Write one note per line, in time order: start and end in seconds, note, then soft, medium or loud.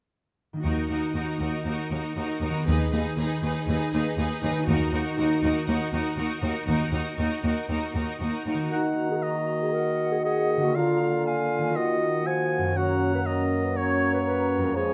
0.53 2.48 D#3 soft
0.53 2.67 A#3 soft
0.53 2.57 D#4 soft
0.60 2.67 F#4 soft
0.60 0.88 F#4 soft
0.64 0.72 D#2 soft
0.64 0.88 D#2 soft
0.64 0.89 D#4 soft
0.64 0.89 A#4 soft
0.89 0.98 D#2 soft
0.89 1.14 D#4 soft
0.89 1.13 F#4 soft
0.89 1.14 A#4 soft
1.14 1.23 D#2 soft
1.14 1.39 D#4 soft
1.14 1.39 F#4 soft
1.14 1.39 A#4 soft
1.40 1.48 D#2 soft
1.40 1.65 D#4 soft
1.40 1.64 F#4 soft
1.40 1.65 A#4 soft
1.65 1.73 D#2 soft
1.65 1.90 D#4 soft
1.65 1.91 F#4 soft
1.65 1.91 A#4 soft
1.91 1.99 D#2 soft
1.91 2.15 D#4 soft
1.91 2.16 F#4 soft
1.91 2.16 A#4 soft
2.16 2.24 D#2 soft
2.16 2.41 D#4 soft
2.16 2.41 F#4 soft
2.16 2.41 A#4 soft
2.41 2.49 D#2 soft
2.41 2.66 D#4 soft
2.41 2.67 F#4 soft
2.41 2.67 A#4 soft
2.49 4.49 D#3 soft
2.54 4.63 B3 soft
2.58 4.58 D#4 soft
2.63 2.75 D#2 soft
2.63 4.68 G#4 soft
2.67 2.91 D#2 soft
2.67 2.91 D#4 soft
2.67 2.91 G#4 soft
2.67 2.91 B4 soft
2.92 3.00 D#2 soft
2.92 3.17 D#4 soft
2.92 3.17 G#4 soft
2.92 3.17 B4 soft
3.17 3.25 D#2 soft
3.17 3.42 D#4 soft
3.17 3.42 G#4 soft
3.17 3.43 B4 soft
3.42 3.50 D#2 soft
3.42 3.67 D#4 soft
3.42 3.68 G#4 soft
3.42 3.67 B4 soft
3.68 3.76 D#2 medium
3.68 3.92 D#4 soft
3.68 3.91 G#4 soft
3.68 3.93 B4 soft
3.92 4.01 D#2 soft
3.92 4.17 D#4 soft
3.92 4.17 G#4 soft
3.92 4.17 B4 soft
4.17 4.25 D#2 soft
4.17 4.42 D#4 soft
4.17 4.41 G#4 soft
4.17 4.41 B4 soft
4.42 4.51 D#2 soft
4.42 4.67 D#4 soft
4.42 4.67 G#4 soft
4.42 4.67 B4 soft
4.50 8.40 D#3 soft
4.54 8.44 A#3 soft
4.59 8.49 D#4 soft
4.63 8.53 F#4 soft
4.68 4.91 D#2 medium
4.68 4.76 D#2 soft
4.68 4.92 D#4 soft
4.68 4.92 F#4 soft
4.68 4.92 A#4 soft
4.93 5.01 D#2 soft
4.93 5.17 D#4 soft
4.93 5.17 F#4 soft
4.93 5.16 A#4 soft
5.17 5.26 D#2 soft
5.17 5.42 D#4 soft
5.17 5.42 F#4 soft
5.17 5.41 A#4 soft
5.42 5.50 D#2 medium
5.42 5.67 D#4 soft
5.42 5.67 F#4 soft
5.42 5.66 A#4 soft
5.67 5.75 D#2 medium
5.67 5.92 D#4 soft
5.67 5.92 F#4 soft
5.67 5.91 A#4 soft
5.92 6.00 D#2 soft
5.92 6.17 D#4 soft
5.92 6.16 F#4 soft
5.92 6.17 A#4 soft
6.17 6.25 D#2 soft
6.17 6.41 D#4 soft
6.17 6.41 F#4 soft
6.17 6.41 A#4 soft
6.42 6.50 D#2 soft
6.42 6.67 D#4 soft
6.42 6.66 F#4 soft
6.42 6.66 A#4 soft
6.67 6.75 D#2 soft
6.67 6.91 D#2 soft
6.67 6.92 D#4 soft
6.67 6.91 F#4 soft
6.67 6.91 A#4 soft
6.92 7.00 D#2 soft
6.92 7.18 D#4 soft
6.92 7.17 F#4 soft
6.92 7.17 A#4 soft
7.18 7.26 D#2 soft
7.18 7.43 D#4 soft
7.18 7.42 F#4 soft
7.18 7.42 A#4 soft
7.43 7.52 D#2 soft
7.43 7.68 D#4 soft
7.43 7.68 F#4 soft
7.43 7.68 A#4 soft
7.69 7.77 D#2 soft
7.69 7.94 D#4 soft
7.69 7.93 F#4 soft
7.69 7.94 A#4 soft
7.94 8.02 D#2 soft
7.94 8.20 D#4 soft
7.94 8.19 F#4 soft
7.94 8.19 A#4 soft
8.20 8.28 D#2 soft
8.20 8.46 D#4 soft
8.20 8.46 F#4 soft
8.20 8.45 A#4 soft
8.46 8.54 D#2 soft
8.46 8.72 D#4 soft
8.46 8.72 F#4 soft
8.46 8.72 A#4 soft
8.54 10.68 D#3 soft
8.58 10.60 A#3 soft
8.63 10.73 F#4 soft
8.67 10.69 A#4 soft
8.72 10.77 D#3 soft
8.72 12.72 A#3 soft
8.72 9.08 D#4 medium
8.72 10.71 F#4 soft
8.72 9.24 F#5 soft
8.72 9.69 A#5 soft
9.11 9.16 G#4 soft
9.22 9.60 F#4 soft
9.22 10.24 D#5 soft
9.62 9.75 G#4 medium
9.73 10.11 A#4 medium
9.73 10.76 F#5 soft
10.12 10.17 G#4 medium
10.24 10.65 G#4 medium
10.24 10.77 D#5 soft
10.57 11.69 D3 soft
10.61 11.62 A#3 soft
10.61 10.77 F#4 soft
10.66 11.74 F4 soft
10.70 11.71 A#4 soft
10.75 11.78 D3 soft
10.75 11.00 F4 medium
10.75 11.75 F4 soft
10.75 11.25 F5 soft
10.75 11.25 A#5 soft
11.01 12.49 F4 medium
11.26 11.77 F5 soft
11.26 11.77 G#5 soft
11.58 12.69 D#3 soft
11.63 12.61 A#3 soft
11.67 14.73 F#4 soft
11.72 12.70 A#4 soft
11.76 12.26 D#3 soft
11.76 12.77 F#4 soft
11.76 12.28 D#5 soft
11.76 12.76 F#5 soft
12.26 12.77 F3 soft
12.26 12.78 G#5 soft
12.58 14.69 F#2 soft
12.63 14.71 A#3 soft
12.67 14.65 C#4 soft
12.72 14.75 F#3 soft
12.72 14.75 A#4 soft
12.76 14.72 A#3 soft
12.76 14.94 C#4 soft
12.76 13.11 F#4 medium
12.76 13.28 F#5 soft
12.76 13.44 A#5 soft
13.14 13.20 B4 soft
13.26 13.65 A#4 soft
13.26 13.78 D#5 soft
13.64 13.76 B4 soft
13.76 14.75 C#5 soft
13.76 14.13 C#5 medium
13.76 14.74 A#5 soft
14.14 14.19 B4 medium
14.26 14.65 B4 medium
14.58 14.94 F2 soft
14.62 14.94 G#3 soft
14.62 14.75 A#4 soft
14.67 14.94 C#4 soft
14.71 14.94 C#5 soft
14.75 14.94 F3 soft
14.75 14.94 G#3 soft
14.75 14.94 G#4 medium
14.75 14.94 C#5 soft
14.75 14.94 G#5 soft